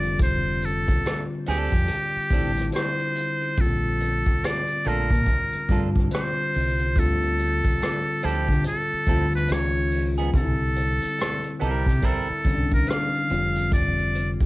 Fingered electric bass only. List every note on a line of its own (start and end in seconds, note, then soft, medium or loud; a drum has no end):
0.00 0.85 F1 medium
0.89 muted fingered electric bass stroke soft
1.48 1.71 D2 medium
1.73 1.87 F2 medium
2.16 muted fingered electric bass stroke soft
2.31 2.70 A1 medium
3.59 4.23 A#1 medium
4.86 5.10 A#1 medium
5.11 5.26 A#2 medium
5.55 muted fingered electric bass stroke soft
5.70 6.08 G2 medium
6.56 6.94 C2 medium
6.97 7.61 D2 medium
8.24 8.48 D2 medium
8.49 8.64 D3 medium
8.93 muted fingered electric bass stroke soft
9.08 9.46 D2 medium
9.50 10.30 C#2 medium
10.35 10.99 C2 medium
11.04 muted fingered electric bass stroke soft
11.62 11.85 C2 medium
11.87 12.02 C3 medium
12.30 muted fingered electric bass stroke soft
12.46 12.84 C2 medium
13.31 14.37 F1 medium
14.42 muted fingered electric bass stroke soft